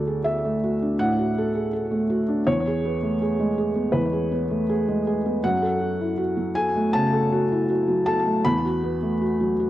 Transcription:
Already playing: D2 F#4 A4 D5
0.07 G#4
0.24 A4 E5
0.45 A3
0.64 F#4
0.82 D4
0.99 A2 F#5
1.19 F#4
1.38 A4
1.55 G#4
1.73 A4
1.91 A3
2.10 F#4
2.28 D4
2.47 E2 C#5
2.67 G#4
2.85 B3
3.03 A3
3.22 G#4
3.39 G#3
3.58 G#4
3.75 B3
3.92 E2 B4
4.13 G#4
4.32 B3
4.50 A3
4.69 G#4
4.88 G#3
5.07 G#4
5.26 B3
5.44 F#2 F#5
5.62 A4
5.81 F#4
6.01 E4
6.18 F#4
6.37 F#3
6.55 A4 G#5
6.76 A3
6.93 C#3 A5
7.13 A4
7.32 F#4
7.52 E4
7.70 F#4
7.88 F#3
8.06 A4 A5
8.26 A3
8.45 E2 B5
8.65 F#4
8.83 B3
9.02 A3
9.22 F#4
9.41 F#3
9.60 F#4

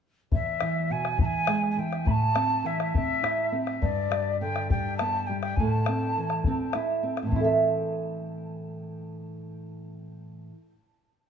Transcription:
0.32 E2 E5, bombo low
0.61 E3, bombo rim
0.90 B2 G#5
1.05 bombo rim
1.18 E3 A5, bombo low
1.25 G#5
1.47 G#3, bombo rim
1.64 bombo rim
1.71 G#5
1.77 E3 G5
1.93 bombo rim
2.05 A2 B5, bombo low
2.11 A5
2.36 C4, bombo rim
2.64 E3 E5
2.80 bombo rim
2.94 C4 E5, bombo low
3.23 E4, bombo rim
3.38 bombo rim
3.52 C4
3.67 bombo rim
3.81 G2 D5, bombo low
4.11 G3, bombo rim
4.41 D3 G5
4.56 bombo rim
4.70 G3 G5, bombo low
4.97 A5, bombo rim
5.01 B3
5.14 bombo rim
5.26 G3 G5
5.41 G5, bombo rim
5.56 A2 G#5, bombo low
5.68 A5
5.86 C4, bombo rim
6.16 E3, bombo rim
6.30 bombo rim
6.44 C4, bombo low
6.73 E4, bombo rim
7.03 C4
7.17 bombo rim
7.22 A2
7.26 E3
7.31 C4, bombo low
7.36 E4
7.40 A4
7.44 E5

